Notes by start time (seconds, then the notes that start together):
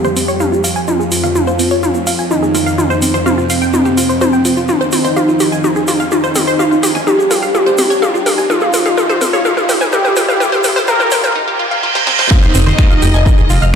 Already playing: F2 G4, riser
0.04 C5, low conga, shaker
0.16 C4, open hi-hat, shaker
0.28 C#5, shaker
0.40 F5, mid tom, shaker
0.52 F4, shaker
0.64 F5, open hi-hat, shaker
0.76 G#5, shaker
0.88 D#4 F4, mid tom, shaker
1.00 G#4, shaker
1.12 F4, open hi-hat, shaker
1.24 F5, low conga, shaker
1.35 F4, mid tom, shaker
1.47 C5, shaker
1.59 C4, open hi-hat, shaker
1.70 C#5, shaker
1.83 F5, mid tom, shaker
1.94 F4, shaker
2.07 F5, open hi-hat, shaker
2.18 G#5, shaker
2.31 D#4, mid tom, shaker
2.43 G#4, shaker
2.55 F4, open hi-hat, low conga, shaker
2.67 F5, shaker
2.78 F4, mid tom, shaker
2.90 C5, shaker
3.02 C4, open hi-hat, shaker
3.14 C5, low conga, shaker
3.26 C4 F5, mid tom, shaker
3.38 F4, shaker
3.50 F5, open hi-hat, shaker
3.62 G5, shaker
3.74 D#4, mid tom, shaker
3.85 G4, low conga, shaker
3.97 F4, open hi-hat, shaker
4.09 C5, shaker
4.21 C5, mid tom, shaker
4.33 G5, shaker
4.45 F4, open hi-hat, shaker
4.57 F4, shaker
4.68 D#4 F4, mid tom, shaker
4.81 C5, shaker
4.92 C4, open hi-hat, mid tom, shaker
5.05 C5, low conga, shaker
5.16 F5, mid tom, shaker
5.28 F4, shaker
5.40 G4, open hi-hat, mid tom, shaker
5.52 G#5, shaker
5.64 D#4, mid tom, shaker
5.75 G#4, shaker
5.87 F4, open hi-hat, mid tom, shaker
6.00 F5, shaker
6.12 D#4 F4, mid tom, shaker
6.23 C5, shaker
6.35 C4, open hi-hat, mid tom, low conga, shaker
6.47 C5, shaker
6.59 F5, mid tom, shaker
6.71 F4, shaker
6.83 G4, open hi-hat, mid tom, shaker
6.95 G#5, low conga, shaker
7.07 D#4 G4, mid tom, shaker
7.19 G#4, shaker
7.31 F4, open hi-hat, mid tom, shaker
7.43 F5, shaker
7.55 F4, mid tom, shaker
7.66 C5, low conga, shaker
7.78 C4, open hi-hat, mid tom, shaker
7.90 C#5, shaker
8.02 F5, mid tom, shaker
8.14 F4, shaker
8.26 G4, open hi-hat, mid tom, shaker
8.38 G#5, shaker
8.50 D#4 F4, mid tom, shaker
8.61 G#4, mid tom, shaker
8.73 F4, open hi-hat, mid tom, shaker
8.86 F5, mid tom, low conga, shaker
8.98 F4, mid tom, shaker
9.09 C5, mid tom, shaker
9.21 C4, open hi-hat, mid tom, shaker
9.33 C#5, mid tom, shaker
9.45 F5, mid tom, shaker
9.57 F4, mid tom, shaker
9.69 G4, open hi-hat, mid tom, shaker
9.81 G#5, mid tom, shaker
9.93 D#4 G4, mid tom, shaker
10.05 G#4, mid tom, shaker
10.16 F4, open hi-hat, mid tom, low conga, shaker
10.28 F5, mid tom, shaker
10.40 F4, mid tom, shaker
10.52 C5, mid tom, shaker
10.64 C4, open hi-hat, mid tom, shaker
10.76 C5, mid tom, low conga, shaker
10.88 A#4 F5, mid tom, shaker
11.00 F4, mid tom, shaker
11.11 G4, open hi-hat, mid tom, shaker
11.23 G5, mid tom, shaker
11.36 D#4, reverse cymbal
11.48 G4
11.59 F4
11.71 F5
11.83 F4
11.95 C5, snare
12.07 C4, snare
12.19 C5, snare
12.31 F2 D#4 F4 D#5 F5, kick, downlifter, shaker
12.42 C5 C6, shaker
12.54 F1 C4 C5, open hi-hat, shaker
12.67 C5 C6, low conga, shaker
12.78 F5 F6, finger snap, kick, shaker
12.90 F4 F5, shaker
13.02 F1 G4 G5, open hi-hat, shaker
13.14 F1 G#5 G#6, shaker
13.26 D#4 D#5, kick, shaker
13.38 G#4 G#5, shaker
13.50 F1 F4 F5, open hi-hat, shaker
13.61 F1 F5 F6, shaker